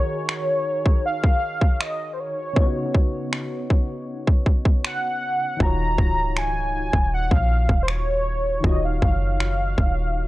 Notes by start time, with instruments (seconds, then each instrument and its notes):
Already playing: synth keys D#3 D#4 F#4 G#4 A#4 C#5, soft synth lead C#5
0.29 finger snap
0.86 kick
1.06 soft synth lead F5
1.24 kick
1.61 kick
1.81 soft synth lead D#5, finger snap
2.13 soft synth lead C5
2.20 soft synth lead C#5
2.53 synth keys C#3 B3, kick
2.57 synth keys D#4 F4
2.62 synth keys C#5
2.66 synth keys F#4
2.94 kick
3.33 finger snap
3.70 kick
4.27 kick
4.46 kick
4.65 kick
4.85 soft synth lead F#5, finger snap
5.57 808-style bass D#1, synth keys D#3 D#4, kick
5.61 synth keys F4 F#4, soft synth lead A#5
5.65 synth keys C#5
5.98 808-style bass C#1, kick
6.37 soft synth lead G#5, finger snap
6.93 808-style bass D#1, kick
7.14 soft synth lead F#5
7.31 808-style bass A#1, soft synth lead F5, kick
7.69 808-style bass D#1, kick
7.83 soft synth lead C5
7.88 soft synth lead C#5, finger snap
8.61 808-style bass D#1, synth keys D#3 D#4, kick
8.65 synth keys F4 F#4, soft synth lead D#5
8.69 synth keys C#5
8.85 soft synth lead F5
9.02 808-style bass F#1, soft synth lead F5, kick
9.40 finger snap
9.78 808-style bass D#1, kick